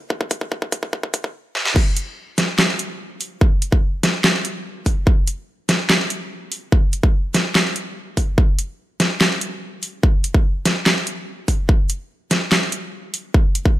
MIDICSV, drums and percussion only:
0, 0, Header, 1, 2, 480
1, 0, Start_track
1, 0, Tempo, 413793
1, 119, Time_signature, 4, 2, 24, 8
1, 16002, End_track
2, 0, Start_track
2, 0, Title_t, "Drums"
2, 119, Note_on_c, 9, 36, 111
2, 235, Note_off_c, 9, 36, 0
2, 239, Note_on_c, 9, 36, 100
2, 355, Note_off_c, 9, 36, 0
2, 358, Note_on_c, 9, 42, 85
2, 359, Note_on_c, 9, 36, 107
2, 474, Note_off_c, 9, 42, 0
2, 475, Note_off_c, 9, 36, 0
2, 479, Note_on_c, 9, 36, 90
2, 595, Note_off_c, 9, 36, 0
2, 599, Note_on_c, 9, 36, 103
2, 715, Note_off_c, 9, 36, 0
2, 719, Note_on_c, 9, 36, 92
2, 835, Note_off_c, 9, 36, 0
2, 839, Note_on_c, 9, 36, 106
2, 839, Note_on_c, 9, 42, 83
2, 955, Note_off_c, 9, 36, 0
2, 955, Note_off_c, 9, 42, 0
2, 960, Note_on_c, 9, 36, 95
2, 1076, Note_off_c, 9, 36, 0
2, 1079, Note_on_c, 9, 36, 108
2, 1195, Note_off_c, 9, 36, 0
2, 1199, Note_on_c, 9, 36, 91
2, 1315, Note_off_c, 9, 36, 0
2, 1319, Note_on_c, 9, 36, 107
2, 1319, Note_on_c, 9, 42, 82
2, 1435, Note_off_c, 9, 36, 0
2, 1435, Note_off_c, 9, 42, 0
2, 1440, Note_on_c, 9, 36, 98
2, 1556, Note_off_c, 9, 36, 0
2, 1799, Note_on_c, 9, 38, 62
2, 1915, Note_off_c, 9, 38, 0
2, 1919, Note_on_c, 9, 38, 74
2, 2035, Note_off_c, 9, 38, 0
2, 2039, Note_on_c, 9, 49, 103
2, 2040, Note_on_c, 9, 36, 123
2, 2155, Note_off_c, 9, 49, 0
2, 2156, Note_off_c, 9, 36, 0
2, 2280, Note_on_c, 9, 42, 82
2, 2396, Note_off_c, 9, 42, 0
2, 2760, Note_on_c, 9, 38, 63
2, 2760, Note_on_c, 9, 42, 83
2, 2876, Note_off_c, 9, 38, 0
2, 2876, Note_off_c, 9, 42, 0
2, 2999, Note_on_c, 9, 38, 122
2, 2999, Note_on_c, 9, 39, 89
2, 3115, Note_off_c, 9, 38, 0
2, 3115, Note_off_c, 9, 39, 0
2, 3239, Note_on_c, 9, 42, 82
2, 3355, Note_off_c, 9, 42, 0
2, 3719, Note_on_c, 9, 46, 95
2, 3835, Note_off_c, 9, 46, 0
2, 3959, Note_on_c, 9, 36, 127
2, 4075, Note_off_c, 9, 36, 0
2, 4199, Note_on_c, 9, 42, 80
2, 4315, Note_off_c, 9, 42, 0
2, 4320, Note_on_c, 9, 36, 111
2, 4436, Note_off_c, 9, 36, 0
2, 4679, Note_on_c, 9, 38, 66
2, 4679, Note_on_c, 9, 42, 77
2, 4795, Note_off_c, 9, 38, 0
2, 4795, Note_off_c, 9, 42, 0
2, 4919, Note_on_c, 9, 38, 127
2, 4919, Note_on_c, 9, 39, 91
2, 5035, Note_off_c, 9, 38, 0
2, 5035, Note_off_c, 9, 39, 0
2, 5159, Note_on_c, 9, 42, 79
2, 5275, Note_off_c, 9, 42, 0
2, 5639, Note_on_c, 9, 36, 62
2, 5639, Note_on_c, 9, 46, 90
2, 5755, Note_off_c, 9, 36, 0
2, 5755, Note_off_c, 9, 46, 0
2, 5879, Note_on_c, 9, 36, 127
2, 5995, Note_off_c, 9, 36, 0
2, 6119, Note_on_c, 9, 42, 77
2, 6235, Note_off_c, 9, 42, 0
2, 6599, Note_on_c, 9, 38, 66
2, 6599, Note_on_c, 9, 42, 75
2, 6715, Note_off_c, 9, 38, 0
2, 6715, Note_off_c, 9, 42, 0
2, 6839, Note_on_c, 9, 38, 123
2, 6839, Note_on_c, 9, 39, 94
2, 6955, Note_off_c, 9, 38, 0
2, 6955, Note_off_c, 9, 39, 0
2, 7079, Note_on_c, 9, 42, 75
2, 7195, Note_off_c, 9, 42, 0
2, 7559, Note_on_c, 9, 46, 91
2, 7675, Note_off_c, 9, 46, 0
2, 7799, Note_on_c, 9, 36, 127
2, 7915, Note_off_c, 9, 36, 0
2, 8039, Note_on_c, 9, 42, 73
2, 8155, Note_off_c, 9, 42, 0
2, 8160, Note_on_c, 9, 36, 109
2, 8276, Note_off_c, 9, 36, 0
2, 8520, Note_on_c, 9, 38, 63
2, 8520, Note_on_c, 9, 42, 76
2, 8636, Note_off_c, 9, 38, 0
2, 8636, Note_off_c, 9, 42, 0
2, 8760, Note_on_c, 9, 38, 117
2, 8760, Note_on_c, 9, 39, 92
2, 8876, Note_off_c, 9, 38, 0
2, 8876, Note_off_c, 9, 39, 0
2, 8999, Note_on_c, 9, 42, 74
2, 9115, Note_off_c, 9, 42, 0
2, 9479, Note_on_c, 9, 36, 65
2, 9480, Note_on_c, 9, 46, 96
2, 9595, Note_off_c, 9, 36, 0
2, 9596, Note_off_c, 9, 46, 0
2, 9719, Note_on_c, 9, 36, 127
2, 9835, Note_off_c, 9, 36, 0
2, 9959, Note_on_c, 9, 42, 78
2, 10075, Note_off_c, 9, 42, 0
2, 10439, Note_on_c, 9, 38, 63
2, 10439, Note_on_c, 9, 42, 76
2, 10555, Note_off_c, 9, 38, 0
2, 10555, Note_off_c, 9, 42, 0
2, 10679, Note_on_c, 9, 38, 118
2, 10679, Note_on_c, 9, 39, 81
2, 10795, Note_off_c, 9, 38, 0
2, 10795, Note_off_c, 9, 39, 0
2, 10920, Note_on_c, 9, 42, 76
2, 11036, Note_off_c, 9, 42, 0
2, 11399, Note_on_c, 9, 46, 95
2, 11515, Note_off_c, 9, 46, 0
2, 11639, Note_on_c, 9, 36, 121
2, 11755, Note_off_c, 9, 36, 0
2, 11879, Note_on_c, 9, 42, 82
2, 11995, Note_off_c, 9, 42, 0
2, 12000, Note_on_c, 9, 36, 106
2, 12116, Note_off_c, 9, 36, 0
2, 12360, Note_on_c, 9, 38, 61
2, 12360, Note_on_c, 9, 42, 78
2, 12476, Note_off_c, 9, 38, 0
2, 12476, Note_off_c, 9, 42, 0
2, 12599, Note_on_c, 9, 38, 110
2, 12599, Note_on_c, 9, 39, 85
2, 12715, Note_off_c, 9, 38, 0
2, 12715, Note_off_c, 9, 39, 0
2, 12840, Note_on_c, 9, 42, 79
2, 12956, Note_off_c, 9, 42, 0
2, 13318, Note_on_c, 9, 46, 100
2, 13319, Note_on_c, 9, 36, 61
2, 13434, Note_off_c, 9, 46, 0
2, 13435, Note_off_c, 9, 36, 0
2, 13559, Note_on_c, 9, 36, 119
2, 13675, Note_off_c, 9, 36, 0
2, 13799, Note_on_c, 9, 42, 80
2, 13915, Note_off_c, 9, 42, 0
2, 14279, Note_on_c, 9, 38, 61
2, 14279, Note_on_c, 9, 42, 85
2, 14395, Note_off_c, 9, 38, 0
2, 14395, Note_off_c, 9, 42, 0
2, 14519, Note_on_c, 9, 38, 109
2, 14519, Note_on_c, 9, 39, 88
2, 14635, Note_off_c, 9, 38, 0
2, 14635, Note_off_c, 9, 39, 0
2, 14758, Note_on_c, 9, 42, 81
2, 14874, Note_off_c, 9, 42, 0
2, 15239, Note_on_c, 9, 46, 105
2, 15355, Note_off_c, 9, 46, 0
2, 15479, Note_on_c, 9, 36, 118
2, 15595, Note_off_c, 9, 36, 0
2, 15719, Note_on_c, 9, 42, 85
2, 15835, Note_off_c, 9, 42, 0
2, 15839, Note_on_c, 9, 36, 102
2, 15955, Note_off_c, 9, 36, 0
2, 16002, End_track
0, 0, End_of_file